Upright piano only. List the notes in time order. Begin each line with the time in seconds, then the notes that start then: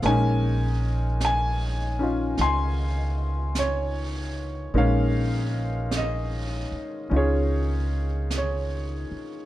0.03 G#3 A#3 C#4 C#5 G#5
0.08 D#4
1.25 G#5
1.99 C#4 D#4 F4
2.41 G#5 C6
3.59 C#5
4.74 G#3 A#3 C#4 D#4 F5
4.78 C#5
5.97 D#5
7.10 C#4 D#4 F4
7.16 G#4 C#5
8.38 C#5